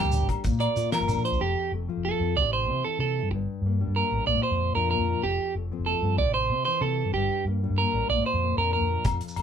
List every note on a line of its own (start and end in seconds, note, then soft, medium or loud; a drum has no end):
0.00 0.21 D2 medium
0.00 0.42 G3 medium
0.00 0.43 A#3 medium
0.00 0.12 D4 medium
0.00 0.27 G4 medium
0.00 0.28 G4 medium
0.04 shekere soft
0.12 0.43 D4 medium
0.12 closed hi-hat soft
0.12 shekere medium
0.20 0.35 A1 medium
0.20 shekere soft
0.29 0.43 G4 medium
0.29 kick medium
0.29 closed hi-hat medium
0.29 low agogo medium
0.29 shekere soft
0.44 0.52 A#1 medium
0.44 1.40 A#2 medium
0.44 kick medium
0.44 closed hi-hat medium
0.44 shekere medium
0.52 0.67 A#2 medium
0.52 shekere soft
0.60 1.39 A#3 medium
0.60 0.91 D5 medium
0.60 closed hi-hat soft
0.60 low agogo medium
0.76 1.25 F4 medium
0.76 closed hi-hat soft
0.76 shekere medium
0.92 1.39 F3 medium
0.92 1.23 A#4 medium
0.92 snare medium
0.92 closed hi-hat medium
0.92 low agogo medium
1.00 1.15 G1 medium
1.00 shekere soft
1.08 1.39 D4 medium
1.08 closed hi-hat soft
1.08 low agogo medium
1.08 shekere medium
1.15 1.23 A#2 medium
1.25 1.40 C5 medium
1.25 closed hi-hat soft
1.31 1.39 A#1 medium
1.31 shekere soft
1.40 1.54 F1 medium
1.40 2.36 F2 medium
1.40 1.71 G4 medium
1.72 1.86 F1 medium
1.72 2.05 A3 medium
1.89 2.35 F3 medium
1.89 muted nylon-string guitar stroke medium
1.97 2.11 F1 medium
2.05 2.36 A3 medium
2.05 2.35 A4 medium
2.20 2.34 F2 medium
2.20 2.37 C4 medium
2.36 2.43 C2 loud
2.36 2.85 C3 medium
2.36 2.84 E3 medium
2.36 2.69 C4 medium
2.36 2.85 E4 medium
2.36 2.52 D5 medium
2.41 2.68 A1 medium
2.41 3.32 G4 medium
2.53 2.83 C5 medium
2.67 2.82 C3 medium
2.67 3.01 C4 medium
2.84 3.30 E3 medium
2.84 3.17 E4 medium
2.84 2.99 A4 medium
2.99 3.23 C3 medium
2.99 3.31 A4 medium
3.03 3.32 C4 medium
3.19 3.30 G2 medium
3.19 3.32 E4 medium
3.30 3.45 G1 medium
3.30 4.27 G2 medium
3.30 muted clean electric guitar stroke medium
3.62 3.84 G2 medium
3.66 3.95 A#3 medium
3.80 4.26 G3 medium
3.80 4.12 D4 medium
3.87 4.02 G2 medium
3.96 4.26 A#3 medium
3.96 4.26 A#4 medium
4.12 4.19 A1 medium
4.12 4.26 D4 medium
4.27 4.37 A#1 loud
4.27 5.23 A#2 medium
4.27 4.42 D5 medium
4.35 4.43 A#2 medium
4.43 4.74 C5 medium
4.51 4.73 F2 medium
4.61 muted nylon-string guitar stroke medium
4.75 4.97 F2 loud
4.75 5.22 F3 medium
4.75 5.08 D4 medium
4.75 4.89 A#4 medium
4.91 5.22 A#3 medium
4.91 5.21 A#4 medium
4.99 5.13 F2 medium
5.09 5.22 D4 medium
5.23 5.37 F1 medium
5.23 6.19 F2 medium
5.23 5.54 G4 medium
5.55 5.69 F1 medium
5.55 5.86 A3 medium
5.71 6.17 F3 medium
5.71 6.03 C4 medium
5.79 5.93 F1 medium
5.86 6.17 A3 medium
5.86 6.17 A4 medium
6.02 6.17 G2 medium
6.02 6.50 C4 medium
6.18 6.25 C2 loud
6.18 6.67 C3 medium
6.18 6.34 D5 medium
6.25 6.51 A1 medium
6.34 6.64 C5 medium
6.49 6.64 C3 medium
6.49 6.82 C4 medium
6.65 7.13 E3 medium
6.65 6.99 E4 medium
6.65 6.81 C5 medium
6.81 7.05 C3 medium
6.81 7.13 C4 medium
6.81 7.12 A4 medium
7.05 7.12 G2 medium
7.12 7.28 G1 medium
7.12 8.09 G2 medium
7.12 7.44 G4 medium
7.45 7.67 G2 medium
7.45 7.79 A#3 medium
7.63 8.08 G3 medium
7.63 7.94 D4 medium
7.70 7.84 G2 medium
7.78 8.09 A#3 medium
7.78 8.08 A#4 medium
7.93 8.01 A1 medium
7.93 8.08 D4 medium
8.09 8.19 A#1 loud
8.09 9.06 A#2 medium
8.09 8.25 D5 medium
8.17 8.25 A#2 medium
8.26 8.56 C5 medium
8.33 8.55 F2 medium
8.43 8.74 A#3 medium
8.57 8.79 F2 loud
8.57 9.04 F3 medium
8.57 8.90 D4 medium
8.57 8.72 A#4 medium
8.73 9.04 A#3 medium
8.73 9.04 A#4 medium
8.81 8.95 F2 medium
8.91 9.04 D4 medium
9.05 9.19 F1 medium
9.05 9.42 F2 medium
9.05 muted clean electric guitar stroke medium
9.05 kick medium
9.05 closed hi-hat medium
9.05 low agogo medium
9.05 shekere medium
9.21 closed hi-hat soft
9.21 shekere soft
9.28 shekere medium
9.36 9.42 F1 medium
9.36 9.42 A3 medium
9.36 closed hi-hat soft
9.36 low agogo medium
9.36 shekere soft